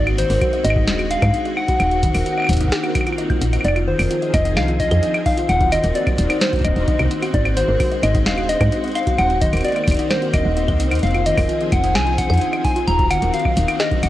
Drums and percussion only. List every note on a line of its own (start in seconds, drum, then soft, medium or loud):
0.07 closed hi-hat soft
0.07 claves medium
0.18 closed hi-hat medium
0.30 open hi-hat medium
0.41 kick loud
0.41 closed hi-hat medium
0.41 claves medium
0.53 closed hi-hat soft
0.64 closed hi-hat medium
0.70 claves medium
0.76 kick loud
0.88 snare loud
0.88 closed hi-hat medium
0.99 closed hi-hat soft
0.99 claves medium
1.11 closed hi-hat medium
1.22 kick loud
1.22 closed hi-hat medium
1.22 claves medium
1.34 closed hi-hat medium
1.45 closed hi-hat soft
1.57 claves medium
1.68 kick loud
1.68 closed hi-hat medium
1.80 closed hi-hat medium
1.80 claves medium
1.91 closed hi-hat soft
2.03 kick loud
2.03 closed hi-hat medium
2.15 open hi-hat medium
2.15 claves medium
2.26 closed hi-hat medium
2.38 claves soft
2.40 claves soft
2.42 claves medium
2.45 claves medium
2.47 kick soft
2.47 closed hi-hat medium
2.47 claves medium
2.53 kick medium
2.53 closed hi-hat medium
2.57 kick medium
2.57 closed hi-hat medium
2.61 kick medium
2.61 closed hi-hat medium
2.65 kick medium
2.68 kick medium
2.68 snare loud
2.68 closed hi-hat medium
2.84 closed hi-hat soft
2.84 claves medium
2.95 kick loud
2.95 closed hi-hat medium
2.95 claves medium
3.01 claves medium
3.07 closed hi-hat medium
3.07 claves medium
3.13 claves soft
3.18 closed hi-hat medium
3.30 kick loud
3.30 closed hi-hat soft
3.30 claves medium
3.41 closed hi-hat medium
3.53 closed hi-hat medium
3.53 claves soft
3.61 closed hi-hat medium
3.61 claves medium
3.68 claves medium
3.76 closed hi-hat soft
3.76 claves medium
3.99 open hi-hat medium
3.99 claves medium
4.11 closed hi-hat medium
4.22 closed hi-hat soft
4.34 kick loud
4.34 closed hi-hat loud
4.34 claves medium
4.45 closed hi-hat medium
4.57 snare loud
4.57 closed hi-hat medium
4.57 claves medium
4.68 closed hi-hat soft
4.80 kick loud
4.80 closed hi-hat loud
4.91 closed hi-hat medium
4.91 claves medium
5.03 closed hi-hat medium
5.15 closed hi-hat soft
5.15 claves medium
5.26 kick loud
5.26 open hi-hat medium
5.38 closed hi-hat medium
5.49 closed hi-hat medium
5.49 claves medium
5.61 kick loud
5.61 closed hi-hat soft
5.72 closed hi-hat loud
5.72 claves medium
5.84 closed hi-hat medium
5.95 closed hi-hat medium
6.07 kick loud
6.07 closed hi-hat soft
6.07 claves medium
6.18 closed hi-hat medium
6.30 closed hi-hat medium
6.30 claves medium
6.41 snare loud
6.41 closed hi-hat medium
6.53 kick loud
6.53 closed hi-hat soft
6.56 closed hi-hat soft
6.59 kick medium
6.59 closed hi-hat soft
6.62 closed hi-hat soft
6.65 closed hi-hat loud
6.65 claves medium
6.67 kick medium
6.67 closed hi-hat soft
6.70 closed hi-hat soft
6.73 closed hi-hat soft
6.76 closed hi-hat medium
6.88 kick loud
6.88 closed hi-hat medium
6.99 closed hi-hat soft
6.99 claves medium
7.11 closed hi-hat loud
7.22 closed hi-hat medium
7.22 claves medium
7.34 kick loud
7.34 closed hi-hat medium
7.45 closed hi-hat soft
7.45 claves medium
7.57 closed hi-hat loud
7.80 kick loud
7.80 closed hi-hat medium
7.80 open hi-hat medium
7.80 claves medium
7.91 closed hi-hat soft
8.03 closed hi-hat loud
8.03 claves medium
8.15 kick loud
8.15 closed hi-hat medium
8.26 snare loud
8.26 closed hi-hat medium
8.38 closed hi-hat soft
8.38 claves medium
8.49 closed hi-hat loud
8.61 kick loud
8.61 closed hi-hat medium
8.61 claves medium
8.72 closed hi-hat medium
8.84 closed hi-hat soft
8.88 closed hi-hat soft
8.91 closed hi-hat soft
8.95 closed hi-hat soft
8.95 open hi-hat medium
8.95 claves medium
8.99 closed hi-hat soft
9.03 closed hi-hat soft
9.07 kick loud
9.07 closed hi-hat medium
9.18 closed hi-hat medium
9.18 claves medium
9.30 closed hi-hat soft
9.41 kick loud
9.41 closed hi-hat medium
9.53 closed hi-hat soft
9.53 claves soft
9.57 closed hi-hat soft
9.57 claves soft
9.61 closed hi-hat soft
9.61 claves soft
9.65 closed hi-hat medium
9.65 claves soft
9.68 closed hi-hat soft
9.68 claves soft
9.72 closed hi-hat soft
9.72 claves soft
9.76 closed hi-hat soft
9.76 claves soft
9.84 kick loud
9.84 closed hi-hat medium
9.84 claves soft
9.90 closed hi-hat medium
9.90 claves medium
9.92 closed hi-hat medium
9.95 closed hi-hat soft
9.97 closed hi-hat soft
9.99 closed hi-hat medium
10.11 snare loud
10.11 closed hi-hat medium
10.11 claves medium
10.22 closed hi-hat soft
10.34 kick loud
10.34 closed hi-hat medium
10.34 claves medium
10.57 closed hi-hat medium
10.68 kick loud
10.68 closed hi-hat soft
10.68 claves medium
10.80 closed hi-hat medium
10.91 closed hi-hat soft
10.91 claves medium
10.95 closed hi-hat soft
10.99 closed hi-hat soft
11.03 closed hi-hat soft
11.07 closed hi-hat soft
11.11 closed hi-hat soft
11.14 closed hi-hat soft
11.14 claves soft
11.26 closed hi-hat medium
11.38 kick loud
11.38 open hi-hat medium
11.38 claves medium
11.49 closed hi-hat medium
11.61 closed hi-hat soft
11.72 kick loud
11.72 closed hi-hat medium
11.72 claves medium
11.84 closed hi-hat medium
11.95 snare loud
11.95 closed hi-hat medium
11.95 claves medium
12.07 closed hi-hat soft
12.18 kick loud
12.18 closed hi-hat medium
12.30 closed hi-hat soft
12.30 claves medium
12.34 closed hi-hat soft
12.38 closed hi-hat soft
12.41 closed hi-hat soft
12.53 closed hi-hat soft
12.53 claves medium
12.65 kick loud
12.65 open hi-hat medium
12.76 closed hi-hat medium
12.88 closed hi-hat soft
12.88 claves medium
12.99 kick loud
12.99 closed hi-hat soft
13.11 closed hi-hat medium
13.11 claves medium
13.22 closed hi-hat medium
13.34 closed hi-hat soft
13.45 kick loud
13.45 claves medium
13.57 closed hi-hat medium
13.68 closed hi-hat medium
13.68 claves medium
13.80 snare loud
13.80 closed hi-hat medium
13.91 kick loud
13.91 closed hi-hat soft
14.03 closed hi-hat medium
14.03 claves medium